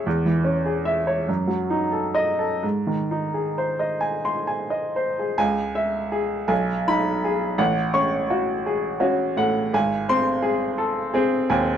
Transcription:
0.07 E2
0.26 E3
0.44 C#4
0.66 G#4
0.85 E5
1.07 C#5
1.28 F#2
1.48 F#3
1.70 D#4
1.92 A4
2.15 D#5
2.39 A4
2.63 G#2
2.87 D#3
3.11 D#4
3.34 G#4
3.58 C5
3.79 D#5
4.01 G#5
4.25 C6
4.47 G#5
4.70 D#5
4.96 C5
5.19 G#4
5.38 C#2 G#5
5.75 E5
6.12 G#4
6.48 B1 G#5
6.88 D#4 B5
7.24 G#4
7.58 A1 F#5
7.94 C#4 C#6
8.30 F#4
8.66 G#4
9.00 C#4 F#4
9.37 A2 F#5
9.74 G#1 G#5
10.09 C4 C6
10.42 G#4
10.78 A4
11.14 C4 G#4
11.50 D#2 G#5

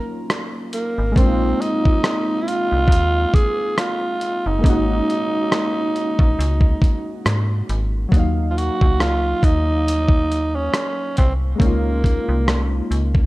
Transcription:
Already playing: F#3 A#3 C#4 D#4 F4 A#4
0.30 cross-stick, closed hi-hat
0.73 A#3, closed hi-hat
0.98 G#1
1.12 G#3 A#3
1.16 A#1 C4 D4, kick, closed hi-hat
1.22 D#4 F4
1.61 D#4, closed hi-hat
1.85 kick
2.04 cross-stick, closed hi-hat
2.42 E4
2.48 F4, closed hi-hat
2.72 C2
2.88 D#2, kick
2.92 closed hi-hat
3.34 G#4, kick, closed hi-hat
3.78 F4, cross-stick, closed hi-hat
4.21 closed hi-hat
4.46 F#1 D#4
4.59 G#3 A#3
4.64 G#1 C#4 D#4, kick, closed hi-hat
4.69 F#4
5.10 closed hi-hat
5.52 cross-stick, closed hi-hat
5.96 closed hi-hat
6.19 A#1, kick
6.39 C#2, closed hi-hat
6.61 kick
6.82 kick, closed hi-hat
7.26 G#2, cross-stick, closed hi-hat
7.69 G#1, closed hi-hat
8.09 D#2 F#3 A#3, kick
8.14 D#4, closed hi-hat
8.19 F5
8.51 F4
8.57 F#4, closed hi-hat
8.81 C#2, kick
9.00 F4, cross-stick, closed hi-hat
9.43 D#2 D#4, kick, closed hi-hat
9.88 closed hi-hat
10.09 kick
10.32 closed hi-hat
10.55 C#4
10.74 cross-stick, closed hi-hat
11.17 C2 C4, kick, closed hi-hat
11.56 G#3 A#3
11.60 C#2 A#3 C#4 D#4, kick, closed hi-hat
11.66 F4
12.04 kick, closed hi-hat
12.29 C2
12.48 cross-stick, closed hi-hat
12.91 C#2, closed hi-hat
13.15 kick

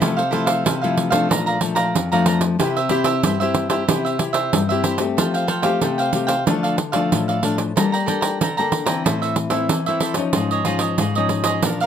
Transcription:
0.00 C3 F3 A3 E4 A4 C5 F5, pandeiro
0.17 A4 C5 F5, pandeiro
0.31 F3 A3 E4 A4 C5 F5, pandeiro
0.46 A4 C5 F5, pandeiro
0.65 C3 E4 A4 C5 F5, pandeiro
0.82 F3 A3 E4 A4 C5 F5, pandeiro
0.98 pandeiro
1.10 F3 A3 D4 A4 C5 F5, pandeiro
1.29 A#2 A4 D5 F5 A#5, pandeiro
1.46 D5 F5 A#5, pandeiro
1.61 F3 A3 D4, muted cavaquinho stroke, pandeiro
1.75 D5 F5 A#5, pandeiro
1.95 F2, pandeiro
2.12 F3 A3 D4 D5 F5 A#5, pandeiro
2.26 A4 D5 F5 A#5, pandeiro
2.41 muted cavaquinho stroke, pandeiro
2.59 C3 C4 E4 G4 C5 E5, pandeiro
2.76 G4 C5 E5, pandeiro
2.89 C4 E4 G4 C5 E5, pandeiro
3.04 G4 C5 E5, pandeiro
3.23 G2 E4 G4 C5 E5, pandeiro
3.40 C4 E4 G4 C5 E5, pandeiro
3.54 pandeiro
3.69 C4 E4 G4 C5 E5, pandeiro
3.88 C3 C4 E4 G4 C5 E5, pandeiro
4.05 G4 C5 E5, pandeiro
4.19 C4 E4 G4, muted cavaquinho stroke, pandeiro
4.33 G4 C5 E5, pandeiro
4.53 G2, pandeiro
4.69 C4 E4 G4 C5 E5, pandeiro
4.83 E4 G4 C5 E5, pandeiro
4.98 A3 C4 G4, muted cavaquinho stroke, pandeiro
5.17 F3 A4 C5 F5 G5, pandeiro
5.34 C5 F5 G5, pandeiro
5.47 A4 C5 F5 G5, pandeiro
5.62 A3 C4 G4 C5 F5 G5, pandeiro
5.81 C3 A4 C5 F5 G5, pandeiro
5.98 C5 F5 G5, pandeiro
6.13 A3 C4 G4, pandeiro
6.27 C5 F5 G5, pandeiro
6.46 D3 F3 A3 D4 A4 D5 F5, pandeiro
6.63 A4 D5 F5, pandeiro
6.77 muted cavaquinho stroke, pandeiro
6.92 F3 A3 D4 A4 D5 F5, pandeiro
7.12 A2, pandeiro
7.28 A4 D5 F5, pandeiro
7.43 F3 A3 D4 A4 D5 F5, pandeiro
7.58 muted cavaquinho stroke, pandeiro
7.76 G3 A#3 D4 A4 D5 G5 A#5, pandeiro
7.92 D5 G5 A#5, pandeiro
8.06 A#3 D4 A4 D5 G5 A#5, pandeiro
8.21 D5 G5 A#5, pandeiro
8.41 D3 A4 D5 G5 A#5, pandeiro
8.57 A#3 D4 A4 D5 G5 A#5, pandeiro
8.72 pandeiro
8.86 E3 C4 E4 D5 G5 A#5, pandeiro
9.04 A2 E4 A4 C5 E5, pandeiro
9.22 A4 C5 E5, pandeiro
9.36 muted cavaquinho stroke, pandeiro
9.50 E3 C4 E4 A4 C5 E5, pandeiro
9.69 E3, pandeiro
9.86 E3 C4 E4 A4 C5 E5, pandeiro
10.00 E4 A4 C5 E5, pandeiro
10.14 F3 C#4 D#4, muted cavaquinho stroke, pandeiro
10.33 G#2 F4 G#4 C#5 D#5, pandeiro
10.51 G#4 C#5 D#5, pandeiro
10.65 F3 C#4 D#4 F4 G#4 C#5 D#5, pandeiro
10.79 G#4 C#5 D#5, pandeiro
10.98 G#2 F4 G#4 C#5 D#5, pandeiro
11.15 F3 C#4 D#4 G#4 C#5 D#5, pandeiro
11.29 pandeiro
11.44 G#4 C#5 D#5, pandeiro
11.63 A#2 F3 A#3 D4 A#4 D5 F5, pandeiro
11.80 D5 F5, pandeiro

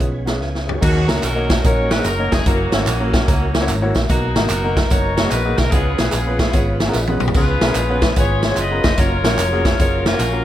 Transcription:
Already playing: F3 G#3 B3 C#4 F4 G#4
0.00 B1, kick, closed hi-hat
0.25 B3 C#4 F4 G#4, snare, closed hi-hat
0.41 C#2 B4 D#5 F5 G#5, snare
0.55 snare
0.66 G#4 C#5, floor tom
0.81 D#2 D#3 F#3 A#3 C#4 D#4 F#4 A#4, kick, crash, tambourine
1.07 A#3 C#4 D#4 F#4 A#4, snare, closed hi-hat, tambourine
1.23 B1 C#4 F#4 A#4, clap, closed hi-hat, tambourine
1.35 A#3 C#4 D#4 F#4 C#5
1.50 kick, snare, closed hi-hat, tambourine
1.64 A#1 A#3 C#4 D#4 F#4 A#4 C#5, kick, closed hi-hat, tambourine
1.91 B4, snare, closed hi-hat, tambourine
1.98 A#3 C#4 D#4 F#4 G#4
2.04 F#1 A#4, clap, closed hi-hat, tambourine
2.19 A#3 C#4 D#4 F#4 C#5
2.32 F1 G#4, kick, snare, closed hi-hat, tambourine
2.46 F#1 F#3 A#3 C#4 E4 F#4 A#4, kick, closed hi-hat, tambourine
2.72 G#1 A#3 C#4 E4 F#4 C#5, snare, closed hi-hat, tambourine
2.87 A#1 A#3 C#4 F#4, clap, closed hi-hat, tambourine
3.00 A#3 C#4 E4 F#4 A#4
3.14 kick, snare, closed hi-hat, tambourine
3.27 C#2 A#3 C#4 E4 F#4 A#4, kick, closed hi-hat, tambourine
3.54 snare, closed hi-hat, tambourine
3.61 A#3 C#4 E4 F#4 C#5
3.68 G#1, clap, closed hi-hat, tambourine
3.81 A#3 C#4 E4 F#4 C#5
3.95 A#1, kick, snare, closed hi-hat, tambourine
4.09 B1 B2 F#3 A#3 B3 D4 D#4 F#4 A#4, kick, closed hi-hat, tambourine
4.15 D#4
4.35 G#1 A#3 B3 D#4 F#4 A#4, snare, closed hi-hat, tambourine
4.50 F#1 D#4 F#4 A#4, clap, closed hi-hat, tambourine
4.63 A#3 B3 D#4 F#4 A#4
4.77 kick, snare, closed hi-hat, tambourine
4.90 F#1 A#3 B3 D#4 F#4 A#4 C#5, kick, closed hi-hat, tambourine
5.16 C#5, snare, closed hi-hat, tambourine
5.24 A#3 B3 D#4 F#4 G#4
5.31 A#1 B4, clap, closed hi-hat, tambourine
5.45 A#3 B3 D#4 F#4 G#4
5.58 B1 A#4, kick, snare, closed hi-hat, tambourine
5.71 C#2 C#3 G#3 B3 C#4 D#4 F4 G#4 B4, kick, closed hi-hat, tambourine
5.77 F4
5.98 B1 B3 C#4 F4 G#4 B4, snare, closed hi-hat, tambourine
6.12 A#1 B3 F4 G#4, clap, closed hi-hat, tambourine
6.27 B3 C#4 F4 G#4 B4
6.39 kick, snare, closed hi-hat, tambourine
6.53 G#1 B3 C#4 F4 G#4 C#5, kick, closed hi-hat, tambourine
6.80 G#5, snare, closed hi-hat, tambourine
6.88 B3 C#4 F4 G#4 A#4
6.94 A#1 D#5, snare, clap, tambourine
7.07 B3 C#4 F4 G#4 B4, high tom
7.20 B1, mid tom, tambourine
7.28 floor tom
7.34 C#2 C#3 B3 C#4 F4 G#4 B4 C#5, kick, tambourine, splash
7.61 B1 B3 C#4 F4 G#4 A#4, snare, closed hi-hat, tambourine
7.75 A#1, clap, closed hi-hat, tambourine
7.89 B3 C#4 F4 G#4 B4
8.02 kick, snare, closed hi-hat, tambourine
8.16 G#1 B3 C#4 F4 G#4 B4 C#5, kick, closed hi-hat, tambourine
8.43 snare, closed hi-hat, tambourine
8.51 B3 C#4 F4 G#4 C#5
8.56 F#1 G#4 D#5, clap, closed hi-hat, tambourine
8.60 B4
8.71 B3 C#4 F4 G#4 A#4
8.84 F1, kick, snare, closed hi-hat, tambourine
8.97 F#1 F#3 A#3 C#4 F4 F#4 A4 A#4 C#5, kick, closed hi-hat, tambourine
9.03 A#4
9.24 A#1 A#3 C#4 F4 F#4 A#4, snare, closed hi-hat, tambourine
9.38 F1, clap, closed hi-hat, tambourine
9.52 A#3 C#4 F4 F#4 G#4
9.65 kick, snare, closed hi-hat, tambourine
9.79 F#1 A#3 C#4 F4 F#4 G#4 A#4 C#5, kick, closed hi-hat, tambourine
10.06 C#4 F4 A#4, snare, closed hi-hat, tambourine
10.12 A#3 C#4 F4 F#4 C#5
10.19 A#1, clap, closed hi-hat, tambourine
10.32 A#3 C#4 F4 F#4 A#4

